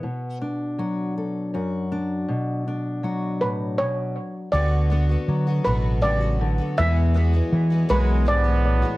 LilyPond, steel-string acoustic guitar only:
\new Staff \with { instrumentName = "Steel-string acoustic guitar" } { \clef bass \time 6/8 \key b \dorian \tempo 4. = 53 << { r8 d'8 fis'8 a'8 fis'8 d'8 | r8 d'8 fis'2 | fis'8 b2~ b8 | <e b e' gis'>8 b2~ b8 | } \\ { b,4 fis4 fis,4 | b,4 fis8 a,8 b,8 r8 | d4 fis8 b,8 cis8 d8 | e,4 e8 fis,8 gis,8 a,8 | } >> }